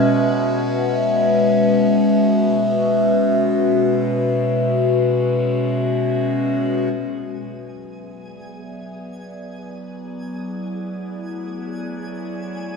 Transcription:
0.00 6.96 B2 medium
0.00 6.96 G#3 medium
0.00 6.96 C#4 medium
0.00 6.95 F#4 medium
0.00 11.30 B4 medium
0.00 8.91 E5 medium
6.96 12.77 F#3 medium
6.96 12.77 G#4 medium
6.96 12.77 G#5 medium
7.51 12.77 B3 medium
7.94 12.77 D5 medium
9.08 12.77 E4 medium
10.08 12.77 A3 medium

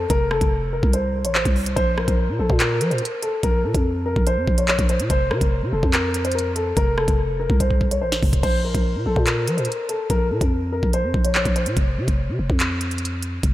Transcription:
0.10 0.40 F1 loud
0.10 0.26 A#4 loud
0.10 kick loud
0.10 closed hi-hat loud
0.31 0.70 A4 loud
0.31 cross-stick loud
0.41 0.81 F1 loud
0.41 kick loud
0.41 closed hi-hat medium
0.73 0.89 A#4 medium
0.83 1.26 C2 loud
0.83 kick medium
0.93 1.23 C5 medium
0.93 closed hi-hat medium
1.25 1.44 A1 loud
1.25 1.33 C#5 medium
1.25 closed hi-hat medium
1.35 1.51 C5 medium
1.35 clap loud
1.45 1.75 C2 loud
1.45 kick medium
1.45 closed hi-hat medium
1.56 open hi-hat medium
1.66 closed hi-hat medium
1.76 2.07 A#1 loud
1.76 1.92 C5 loud
1.76 kick loud
1.76 closed hi-hat loud
1.98 2.37 A#4 medium
1.98 cross-stick loud
2.08 2.30 A#1 loud
2.08 kick medium
2.08 closed hi-hat medium
2.29 2.39 A#2 loud
2.39 2.49 A#1 loud
2.39 2.55 A4 medium
2.50 2.82 A#2 loud
2.50 kick medium
2.60 2.89 A#4 medium
2.60 clap loud
2.60 closed hi-hat medium
2.81 2.93 F3 loud
2.81 closed hi-hat medium
2.91 3.01 A#2 loud
2.91 2.99 C5 medium
2.91 closed hi-hat soft
2.98 3.17 A#4 medium
2.98 closed hi-hat medium
3.05 closed hi-hat medium
3.23 3.38 A4 medium
3.23 closed hi-hat medium
3.43 3.66 A#1 loud
3.43 3.59 A#4 loud
3.43 kick loud
3.43 closed hi-hat loud
3.64 3.74 A#2 loud
3.64 4.03 A4 medium
3.75 4.15 F2 loud
3.75 kick medium
3.75 closed hi-hat medium
4.06 4.22 A#4 medium
4.16 4.39 A#1 loud
4.16 kick medium
4.27 4.56 C5 medium
4.27 closed hi-hat medium
4.37 4.47 F2 loud
4.48 4.78 A#1 loud
4.48 kick loud
4.58 4.66 C#5 medium
4.58 closed hi-hat medium
4.68 4.84 C#5 medium
4.68 clap loud
4.79 5.01 A#1 loud
4.79 kick medium
4.79 closed hi-hat medium
4.89 5.05 C5 medium
4.89 closed hi-hat medium
5.00 5.10 A#2 loud
5.00 closed hi-hat medium
5.10 5.32 F1 loud
5.10 5.26 C5 loud
5.10 kick loud
5.10 closed hi-hat loud
5.31 5.41 C3 loud
5.31 5.70 A#4 medium
5.31 cross-stick loud
5.41 5.64 F1 loud
5.41 kick medium
5.41 closed hi-hat medium
5.62 5.72 C3 loud
5.72 5.82 F1 loud
5.72 5.88 A4 medium
5.83 6.73 F2 loud
5.83 kick medium
5.93 6.23 A#4 medium
5.93 clap loud
5.93 closed hi-hat medium
6.14 closed hi-hat medium
6.25 6.33 C5 medium
6.25 closed hi-hat soft
6.32 6.51 A#4 medium
6.32 closed hi-hat medium
6.39 closed hi-hat medium
6.55 6.71 A4 medium
6.55 closed hi-hat medium
6.77 7.07 F1 loud
6.77 6.93 A#4 loud
6.77 kick loud
6.77 closed hi-hat medium
6.97 7.37 A4 medium
6.97 cross-stick loud
7.08 7.48 F1 loud
7.08 kick medium
7.08 closed hi-hat medium
7.40 7.55 A#4 medium
7.50 8.03 C2 loud
7.50 kick medium
7.60 7.90 C5 medium
7.60 kick medium
7.60 closed hi-hat medium
7.71 kick medium
7.81 kick medium
7.91 7.99 C#5 medium
7.91 closed hi-hat medium
8.02 8.22 A1 loud
8.02 8.17 C5 medium
8.12 snare medium
8.12 closed hi-hat medium
8.23 8.43 F1 loud
8.23 kick loud
8.23 open hi-hat medium
8.33 kick loud
8.33 closed hi-hat medium
8.43 8.73 A#1 loud
8.43 8.59 C5 loud
8.43 kick loud
8.43 closed hi-hat medium
8.43 crash medium
8.65 9.04 A#4 medium
8.75 8.97 A#1 loud
8.75 kick medium
8.75 closed hi-hat medium
8.95 9.05 A#2 medium
9.06 9.16 A#1 loud
9.06 9.22 A4 medium
9.16 9.49 A#2 loud
9.16 kick medium
9.27 9.56 A#4 medium
9.27 clap loud
9.27 closed hi-hat medium
9.48 9.59 F3 loud
9.48 closed hi-hat medium
9.57 9.68 A#2 loud
9.57 9.65 C5 medium
9.57 closed hi-hat soft
9.65 9.84 A#4 medium
9.65 closed hi-hat medium
9.72 closed hi-hat medium
9.89 10.05 A4 medium
9.89 closed hi-hat medium
10.10 10.32 A#1 loud
10.10 10.26 A#4 loud
10.10 kick loud
10.10 closed hi-hat medium
10.31 10.41 A#2 loud
10.31 10.70 A4 medium
10.41 10.81 F2 loud
10.41 kick medium
10.41 closed hi-hat medium
10.72 10.88 A#4 medium
10.83 11.05 A#1 loud
10.83 kick medium
10.93 11.23 C5 medium
10.93 closed hi-hat medium
11.04 11.14 F2 loud
11.14 11.44 A#1 loud
11.14 kick medium
11.24 11.32 C#5 medium
11.24 closed hi-hat medium
11.35 11.51 C#5 medium
11.35 clap loud
11.45 11.68 A#1 loud
11.45 kick medium
11.45 closed hi-hat medium
11.56 11.72 C5 medium
11.56 closed hi-hat medium
11.66 11.76 A#2 loud
11.66 closed hi-hat medium
11.77 11.99 F1 loud
11.77 kick loud
11.77 closed hi-hat medium
11.97 12.07 C3 loud
12.08 12.30 F1 loud
12.08 kick medium
12.08 closed hi-hat medium
12.29 12.39 C3 medium
12.39 12.49 F1 loud
12.50 13.40 F2 loud
12.50 kick medium
12.60 clap loud
12.60 closed hi-hat medium
12.81 closed hi-hat medium
12.91 closed hi-hat soft
12.98 closed hi-hat medium
13.05 closed hi-hat medium
13.23 closed hi-hat medium
13.43 13.54 F1 loud
13.43 kick loud
13.43 closed hi-hat medium

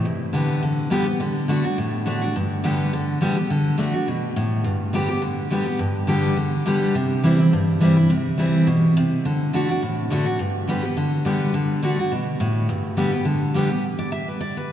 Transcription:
0.05 0.60 G2 medium
0.33 0.61 D3 medium
0.33 0.61 G3 medium
0.33 0.62 B3 loud
0.33 0.62 G4 medium
0.63 0.89 D3 medium
0.90 1.06 D3 medium
0.90 1.06 G3 medium
0.90 1.07 B3 loud
0.90 1.05 G4 loud
1.06 1.20 B3 soft
1.06 1.19 G4 soft
1.20 1.47 D3 medium
1.48 1.63 D3 medium
1.48 1.64 A3 medium
1.48 1.64 D4 medium
1.48 1.63 F#4 medium
1.64 1.78 D4 soft
1.64 1.77 F#4 medium
1.78 2.33 A2 medium
2.06 2.21 D3 medium
2.06 2.22 A3 loud
2.06 2.22 D4 medium
2.06 2.20 F#4 medium
2.21 2.35 D4 soft
2.21 2.34 F#4 soft
2.36 2.90 G2 medium
2.64 2.91 D3 medium
2.64 2.91 G3 medium
2.64 2.92 B3 medium
2.64 2.92 G4 medium
2.93 3.19 D3 medium
3.21 3.36 D3 medium
3.21 3.36 G3 medium
3.21 3.37 B3 loud
3.21 3.35 G4 medium
3.36 3.50 B3 soft
3.36 3.49 G4 soft
3.50 3.77 D3 medium
3.78 3.93 D3 medium
3.78 3.93 A3 medium
3.78 3.94 D4 medium
3.78 3.92 F#4 medium
3.94 4.08 D4 soft
3.94 4.07 F#4 medium
4.08 4.35 B2 medium
4.36 4.64 A2 medium
4.64 5.19 G2 medium
4.93 5.08 D3 medium
4.93 5.09 G3 medium
4.93 5.09 B3 medium
4.93 5.07 G4 medium
5.09 5.22 B3 soft
5.09 5.22 G4 medium
5.22 5.49 D3 medium
5.50 5.66 D3 medium
5.50 5.66 G3 loud
5.50 5.66 B3 medium
5.50 5.64 G4 loud
5.65 5.80 B3 soft
5.65 5.79 G4 soft
5.79 6.34 G2 medium
6.07 6.35 D3 medium
6.07 6.36 G3 medium
6.07 6.36 B3 medium
6.07 6.36 G4 loud
6.37 6.64 D3 medium
6.66 6.93 D3 medium
6.66 6.93 G3 loud
6.66 6.94 B3 medium
6.66 6.94 G4 loud
6.95 7.50 C3 medium
7.23 7.38 E3 medium
7.23 7.39 G3 medium
7.23 7.39 C4 medium
7.23 7.38 E4 medium
7.39 7.53 C4 soft
7.39 7.52 E4 medium
7.53 8.07 G2 medium
7.80 7.96 E3 medium
7.80 7.96 G3 medium
7.80 7.96 C4 medium
7.80 7.95 E4 loud
7.97 8.10 C4 soft
7.97 8.09 E4 medium
8.10 8.65 C3 medium
8.38 8.65 E3 medium
8.38 8.66 G3 medium
8.38 8.66 C4 medium
8.38 8.66 E4 loud
8.67 8.94 B2 medium
8.97 9.24 C3 medium
9.25 9.52 D3 medium
9.53 9.68 D3 medium
9.53 9.68 A3 medium
9.53 9.69 D4 medium
9.53 9.67 F#4 medium
9.69 9.82 D4 medium
9.69 9.81 F#4 medium
9.82 10.37 A2 medium
10.10 10.25 D3 medium
10.10 10.26 A3 loud
10.10 10.26 D4 medium
10.10 10.24 F#4 loud
10.26 10.39 D4 soft
10.26 10.39 F#4 medium
10.39 10.94 G2 medium
10.67 10.83 D3 medium
10.67 10.83 G3 medium
10.67 10.84 B3 loud
10.67 10.81 G4 medium
10.83 10.97 B3 soft
10.83 10.96 G4 medium
10.97 11.24 D3 medium
11.25 11.53 D3 medium
11.25 11.53 G3 medium
11.25 11.53 B3 medium
11.25 11.54 G4 medium
11.54 11.81 D3 medium
11.83 11.98 D3 medium
11.83 11.98 A3 medium
11.83 11.98 D4 medium
11.83 11.98 F#4 medium
11.99 12.12 D4 soft
11.99 12.11 F#4 medium
12.12 12.39 B2 medium
12.40 12.68 A2 medium
12.69 13.24 G2 medium
12.97 13.12 D3 medium
12.97 13.12 G3 medium
12.97 13.13 B3 medium
12.97 13.11 G4 medium
13.12 13.26 B3 medium
13.12 13.25 G4 medium
13.25 13.53 D3 medium
13.54 13.70 D3 medium
13.54 13.70 G3 medium
13.54 13.70 B3 loud
13.54 13.69 G4 medium
13.70 13.84 B3 soft
13.70 13.83 G4 medium
13.99 14.12 D5 medium
14.12 14.27 E5 loud
14.28 14.41 B4 medium
14.41 14.56 D5 medium
14.57 14.72 B4 medium

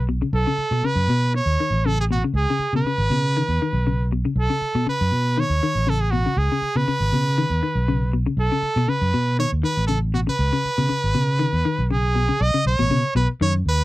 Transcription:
0.00 0.21 B1 medium
0.09 0.17 B2 medium
0.22 0.29 C#3 medium
0.33 0.44 B1 loud
0.33 0.87 A4 medium
0.47 0.63 C#3 medium
0.58 muted fingered electric bass stroke soft
0.71 0.81 B2 medium
0.71 0.80 B2 medium
0.83 1.00 C#3 medium
0.83 1.35 B4 loud
0.83 muted fingered electric bass stroke soft
0.96 1.06 F#2 medium
1.08 1.39 B2 medium
1.08 1.26 B2 medium
1.34 1.87 C#5 medium
1.34 muted clean electric guitar stroke medium
1.46 1.56 D#2 medium
1.60 1.76 D#3 medium
1.70 2.22 A1 medium
1.86 2.01 C#3 medium
1.86 1.99 A4 medium
2.00 2.05 G#4 medium
2.11 2.19 B2 medium
2.11 2.23 F#4 medium
2.24 2.32 C#3 medium
2.34 2.45 C#2 loud
2.34 2.72 G#4 medium
2.50 2.66 C#3 medium
2.59 muted fingered electric bass stroke soft
2.73 2.82 B2 medium
2.73 2.83 C#3 medium
2.73 4.09 B4 medium
2.84 3.02 C#3 medium
2.84 muted fingered electric bass stroke soft
2.98 3.08 G#1 medium
3.10 3.27 B2 medium
3.10 3.41 C#3 medium
3.37 3.52 D#3 medium
3.49 3.58 E2 medium
3.62 3.78 D#3 medium
3.73 4.24 B1 medium
3.87 4.02 C#3 medium
4.12 4.21 B2 medium
4.25 4.32 C#3 medium
4.36 4.47 B1 loud
4.36 4.84 A4 medium
4.50 4.66 C#3 medium
4.61 muted fingered electric bass stroke soft
4.75 4.84 B2 medium
4.75 4.83 B2 medium
4.86 5.03 C#3 medium
4.86 5.41 B4 medium
4.86 muted fingered electric bass stroke soft
5.01 5.10 F#2 medium
5.12 5.43 B2 medium
5.38 5.53 D#3 medium
5.38 5.91 C#5 medium
5.50 5.59 D#2 medium
5.63 5.79 D#3 medium
5.75 6.25 A1 medium
5.87 6.03 C#3 medium
5.87 6.03 A4 medium
6.01 6.12 G#4 medium
6.11 6.21 B2 medium
6.11 6.39 F#4 medium
6.26 6.33 C#3 medium
6.37 6.48 C#2 loud
6.37 6.78 G#4 medium
6.52 6.67 C#3 medium
6.62 muted fingered electric bass stroke soft
6.76 6.83 B2 medium
6.76 6.85 C#3 medium
6.76 8.14 B4 medium
6.87 7.04 C#3 medium
6.87 muted fingered electric bass stroke soft
7.00 7.10 G#1 medium
7.12 7.29 B2 medium
7.12 7.44 C#3 medium
7.38 7.54 D#3 medium
7.50 7.60 E2 medium
7.63 7.79 D#3 medium
7.75 8.26 B1 medium
7.88 8.04 C#3 medium
8.13 8.22 B2 medium
8.26 8.34 C#3 medium
8.37 8.48 B1 loud
8.37 8.91 A4 medium
8.52 8.68 C#3 medium
8.62 muted fingered electric bass stroke soft
8.76 8.86 B2 medium
8.76 8.85 B2 medium
8.88 9.04 C#3 medium
8.88 9.39 B4 medium
8.88 muted fingered electric bass stroke soft
9.02 9.11 F#2 medium
9.14 9.45 B2 medium
9.14 9.30 B2 medium
9.39 9.55 D#3 medium
9.39 9.51 C#5 medium
9.52 9.62 D#2 medium
9.63 9.80 D#3 medium
9.63 9.87 B4 medium
9.77 10.27 A1 medium
9.87 10.05 C#3 medium
9.87 9.99 A4 medium
10.14 10.23 B2 medium
10.14 10.20 F#4 medium
10.27 10.35 C#3 medium
10.27 11.87 B4 medium
10.39 10.50 C#2 loud
10.53 10.69 C#3 medium
10.65 muted fingered electric bass stroke soft
10.78 10.85 B2 medium
10.78 10.88 C#3 medium
10.89 11.05 C#3 medium
10.89 muted fingered electric bass stroke soft
11.04 11.13 G#1 medium
11.15 11.31 B2 medium
11.15 11.46 C#3 medium
11.39 11.56 D#3 medium
11.53 11.62 E2 medium
11.65 11.81 D#3 medium
11.79 12.29 B1 medium
11.90 12.06 C#3 medium
11.90 12.43 G#4 medium
12.15 12.24 B2 medium
12.29 12.36 C#3 medium
12.41 12.51 B1 loud
12.41 12.66 D#5 loud
12.54 12.70 C#3 medium
12.54 muted fingered electric bass stroke soft
12.66 12.76 B1 medium
12.66 13.13 C#5 loud
12.79 12.88 A1 medium
12.79 12.87 B2 medium
12.90 13.01 B2 medium
12.90 13.07 C#3 medium
13.15 13.26 B1 medium
13.15 13.32 B2 medium
13.15 13.28 B4 medium
13.41 13.61 F#2 medium
13.41 13.57 D#3 medium
13.41 13.53 C#5 medium
13.65 13.84 D#2 medium
13.65 13.84 B4 loud

